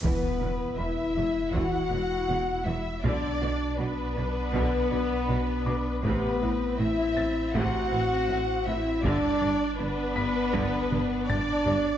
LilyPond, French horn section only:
\new Staff \with { instrumentName = "French horn section" } { \time 4/4 \key e \minor \tempo 4 = 80 b4 e'4 fis'4. e'8 | d'4 b2. | b4 e'4 fis'4. e'8 | d'4 b2 d'4 | }